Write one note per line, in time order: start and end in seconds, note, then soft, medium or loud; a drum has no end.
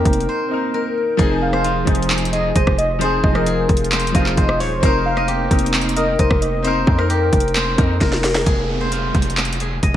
0.00 1.16 A#3 medium
0.00 0.49 C4 loud
0.00 1.16 C4 medium
0.00 0.51 D#4 medium
0.00 2.97 D#4 medium
0.00 1.24 G4 medium
0.00 0.53 A#4 loud
0.00 0.74 A#4 medium
0.00 0.28 C5 loud
0.00 0.70 D#5 medium
0.05 0.27 F1 loud
0.05 kick loud
0.05 closed hi-hat medium
0.13 closed hi-hat medium
0.21 closed hi-hat soft
0.29 1.53 C5 medium
0.49 1.00 C4 medium
0.49 1.01 D#4 medium
0.53 1.02 A#4 medium
0.74 2.86 A#4 medium
1.17 1.85 F1 loud
1.17 1.68 F3 loud
1.17 4.79 F3 medium
1.17 1.69 C4 loud
1.17 1.70 D#4 loud
1.17 2.33 G#4 loud
1.17 4.79 G#4 medium
1.17 kick loud
1.17 closed hi-hat medium
1.22 1.71 G#4 loud
1.42 1.64 F5 medium
1.53 3.01 C5 medium
1.53 cross-stick medium
1.64 4.17 F4 medium
1.64 closed hi-hat medium
1.85 2.53 F1 loud
1.85 2.53 F3 medium
1.85 2.54 C4 medium
1.85 2.54 D#4 medium
1.85 kick loud
1.85 closed hi-hat medium
1.90 2.55 G#4 medium
1.95 closed hi-hat medium
2.03 closed hi-hat medium
2.10 clap loud
2.10 closed hi-hat medium
2.18 closed hi-hat medium
2.25 closed hi-hat medium
2.33 3.46 G#4 medium
2.33 2.54 D#5 medium
2.33 closed hi-hat medium
2.56 2.66 F1 loud
2.56 2.77 C5 medium
2.56 4.14 D#5 medium
2.56 kick medium
2.56 closed hi-hat medium
2.67 3.22 F1 loud
2.67 kick loud
2.67 cross-stick loud
2.78 3.00 D#5 medium
2.78 closed hi-hat medium
2.99 3.25 F3 loud
2.99 3.26 C4 medium
2.99 3.27 D#4 medium
2.99 4.81 F4 medium
2.99 3.91 C5 loud
2.99 closed hi-hat medium
3.04 3.27 G#4 loud
3.24 3.67 F1 loud
3.24 3.45 D#5 loud
3.24 kick loud
3.33 3.92 F3 medium
3.33 3.93 C4 medium
3.33 3.94 D#4 medium
3.33 5.47 A#4 medium
3.33 cross-stick medium
3.37 3.95 G#4 medium
3.46 5.34 G#4 medium
3.46 closed hi-hat medium
3.69 4.13 F1 loud
3.69 kick loud
3.69 closed hi-hat medium
3.77 closed hi-hat medium
3.84 closed hi-hat medium
3.92 4.37 C5 medium
3.92 clap loud
3.92 closed hi-hat medium
4.00 closed hi-hat medium
4.07 closed hi-hat medium
4.12 4.36 F1 loud
4.12 4.63 F3 medium
4.12 4.64 C4 medium
4.12 4.65 D#4 medium
4.12 5.16 D#5 medium
4.12 4.36 F5 medium
4.12 kick loud
4.12 closed hi-hat medium
4.17 4.66 F4 medium
4.26 clap medium
4.37 4.62 F1 loud
4.37 4.66 C5 medium
4.37 4.59 D#5 medium
4.37 kick loud
4.37 closed hi-hat medium
4.49 cross-stick loud
4.60 4.73 D#1 loud
4.60 4.82 C5 medium
4.60 4.89 C#5 medium
4.60 open hi-hat medium
4.72 4.82 F1 medium
4.80 5.48 F1 loud
4.80 8.43 A#3 medium
4.80 5.32 C4 loud
4.80 8.43 C4 medium
4.80 5.33 D#4 medium
4.80 8.43 D#4 medium
4.80 6.64 C5 loud
4.80 kick loud
4.80 closed hi-hat medium
4.85 5.34 A#4 loud
5.06 5.27 F5 loud
5.17 6.19 D#5 medium
5.17 cross-stick medium
5.28 7.10 G4 medium
5.28 closed hi-hat medium
5.48 6.16 F1 loud
5.48 6.16 C4 medium
5.48 6.17 D#4 medium
5.48 kick loud
5.48 closed hi-hat medium
5.53 6.19 A#4 medium
5.59 closed hi-hat medium
5.66 closed hi-hat medium
5.74 clap loud
5.74 closed hi-hat medium
5.81 closed hi-hat medium
5.89 closed hi-hat medium
5.96 6.98 A#4 medium
5.96 6.18 D#5 loud
5.96 closed hi-hat medium
6.19 6.30 F1 loud
6.19 6.41 C5 medium
6.19 7.98 D#5 medium
6.19 kick medium
6.19 closed hi-hat medium
6.30 6.85 F1 loud
6.30 kick loud
6.30 cross-stick loud
6.42 6.63 D#5 medium
6.42 closed hi-hat medium
6.62 6.89 C4 loud
6.62 6.90 D#4 medium
6.62 7.55 C5 loud
6.62 closed hi-hat medium
6.67 6.91 A#4 loud
6.87 7.31 F2 loud
6.87 7.09 C5 medium
6.87 kick loud
6.96 7.56 C4 medium
6.96 7.57 D#4 medium
6.96 8.01 A#4 medium
6.96 cross-stick medium
7.01 7.58 A#4 loud
7.10 8.52 G4 medium
7.10 closed hi-hat medium
7.33 7.76 F1 loud
7.33 kick loud
7.33 closed hi-hat medium
7.40 closed hi-hat medium
7.48 closed hi-hat soft
7.55 8.80 C5 loud
7.55 clap loud
7.55 closed hi-hat medium
7.76 8.00 F2 loud
7.76 8.27 C4 medium
7.76 8.28 D#4 medium
7.76 kick medium
7.76 closed hi-hat medium
7.80 8.29 A#4 medium
8.01 8.45 F1 loud
8.01 9.97 A#4 medium
8.01 kick medium
8.01 snare medium
8.01 closed hi-hat medium
8.12 snare medium
8.24 snare loud
8.24 open hi-hat medium
8.35 snare loud
8.46 9.12 F1 loud
8.46 9.60 G#4 loud
8.46 kick loud
8.46 closed hi-hat medium
8.46 downlifter medium
8.81 9.97 C5 medium
8.92 9.97 F4 medium
8.92 closed hi-hat medium
9.15 9.80 F1 loud
9.15 kick loud
9.15 closed hi-hat medium
9.22 closed hi-hat medium
9.30 closed hi-hat medium
9.37 clap loud
9.37 closed hi-hat medium
9.45 closed hi-hat medium
9.53 closed hi-hat medium
9.60 9.97 G#4 medium
9.60 closed hi-hat medium
9.83 9.94 F1 loud
9.83 9.97 D#5 medium
9.83 kick medium
9.83 closed hi-hat medium